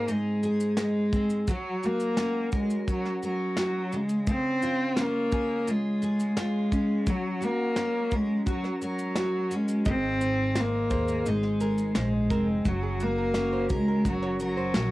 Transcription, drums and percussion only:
0.08 shaker
0.43 shaker
0.60 shaker
0.77 snare, shaker
1.13 kick, shaker
1.30 shaker
1.47 kick, shaker
1.83 shaker
2.00 shaker
2.17 snare, shaker
2.52 kick, shaker
2.70 shaker
2.88 kick, shaker
3.05 snare
3.23 shaker
3.57 snare, shaker
3.92 shaker
4.09 shaker
4.27 kick, shaker
4.62 shaker
4.97 snare, shaker
5.32 kick, shaker
5.68 shaker
6.02 shaker
6.20 shaker
6.37 snare, shaker
6.72 kick, shaker
7.07 kick, shaker
7.42 shaker
7.76 snare, shaker
8.11 kick, shaker
8.47 kick, shaker
8.64 snare
8.82 shaker
8.99 shaker
9.15 snare, shaker
9.51 shaker
9.68 shaker
9.85 kick, shaker
10.21 shaker
10.55 snare, shaker
10.91 kick, shaker
11.08 shaker
11.26 shaker
11.43 snare
11.60 shaker
11.78 shaker
11.95 snare, shaker
12.31 kick, shaker
12.65 kick, shaker
13.00 shaker
13.34 snare, shaker
13.69 kick, shaker
14.05 kick, shaker
14.22 snare
14.40 shaker
14.74 snare, shaker

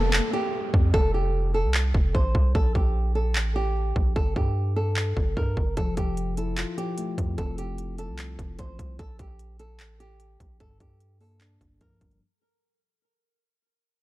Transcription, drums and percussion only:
0.13 clap
0.74 kick
0.94 kick
1.74 clap
1.94 kick
2.15 kick
2.35 kick
2.55 kick
2.75 kick
3.35 clap
3.96 kick
4.16 kick
4.36 kick
4.97 clap
5.17 kick
5.37 kick
5.57 kick
5.77 kick, closed hi-hat
5.97 kick, closed hi-hat
6.17 closed hi-hat
6.37 closed hi-hat
6.57 clap, closed hi-hat
6.78 closed hi-hat
6.98 closed hi-hat
7.18 kick, closed hi-hat
7.38 kick, closed hi-hat
7.58 closed hi-hat
7.78 closed hi-hat
7.98 closed hi-hat
8.18 clap, closed hi-hat
8.39 kick, closed hi-hat
8.59 kick, closed hi-hat
8.79 kick, closed hi-hat
8.99 kick, closed hi-hat
9.19 kick, closed hi-hat
9.39 closed hi-hat
9.59 closed hi-hat
9.80 clap, closed hi-hat
10.00 closed hi-hat
10.20 closed hi-hat
10.40 kick, closed hi-hat
10.60 kick, closed hi-hat
10.80 kick, closed hi-hat
11.00 closed hi-hat
11.21 open hi-hat
11.41 clap, closed hi-hat
11.61 kick, closed hi-hat
11.81 kick, closed hi-hat
12.01 kick, closed hi-hat
12.11 closed hi-hat

